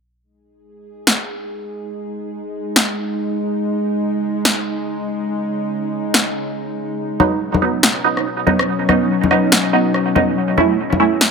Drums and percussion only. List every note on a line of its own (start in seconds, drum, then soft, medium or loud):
1.07 snare loud
2.76 snare loud
4.45 snare loud
6.14 snare loud
7.20 high conga medium
7.54 high conga medium
7.83 snare loud
8.17 cross-stick medium
8.47 high conga medium
8.59 cross-stick medium
8.89 cross-stick medium
8.89 high conga medium
9.24 high conga medium
9.31 cross-stick medium
9.52 snare loud
9.94 cross-stick medium
10.16 high conga medium
10.58 high conga medium
10.93 high conga medium
11.21 snare loud